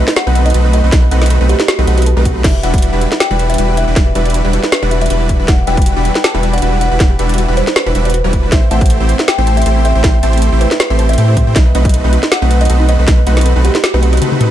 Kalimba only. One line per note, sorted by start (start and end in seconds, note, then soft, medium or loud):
0.17 0.41 F#5 loud
0.46 0.70 D#5 medium
0.73 0.98 D#5 loud
1.49 1.66 G4 medium
1.68 1.93 F#4 medium
1.98 2.37 F#4 medium
2.44 2.61 E5 loud
2.63 2.88 F#5 medium
3.20 3.45 G5 loud
3.50 3.74 E5 medium
3.77 4.02 E5 loud
4.53 4.70 B4 medium
4.72 4.97 B4 medium
5.01 5.41 E5 medium
5.48 5.65 F#5 loud
5.67 5.92 G5 loud
6.24 6.49 A5 medium
6.53 6.77 F#5 medium
6.81 7.06 F#5 loud
7.57 7.74 C5 medium
7.76 8.01 B4 loud
8.05 8.45 B4 medium
8.52 8.68 E5 loud
8.71 8.96 F#5 medium
9.28 9.53 G5 loud
9.57 9.81 E5 medium
9.85 10.10 E5 medium
10.61 10.77 B4 medium
10.80 11.05 B4 medium
11.09 11.49 E5 loud
11.56 11.72 D#5 loud
11.75 12.00 D#5 loud
12.32 12.57 F#5 loud
12.61 12.85 D#5 medium
12.89 13.14 D#5 loud
13.65 13.81 G4 medium
13.84 14.08 F#4 loud
14.13 14.51 F#4 medium